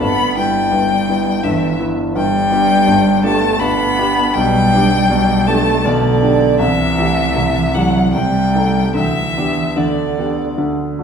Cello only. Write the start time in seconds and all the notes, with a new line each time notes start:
0.01 B3
0.37 G3
1.45 E3
2.16 G3
3.24 A3
3.61 B3
4.37 G3
5.47 A3
5.86 D3
6.59 E3
7.74 F#3
8.14 G3
8.95 E3
9.77 D3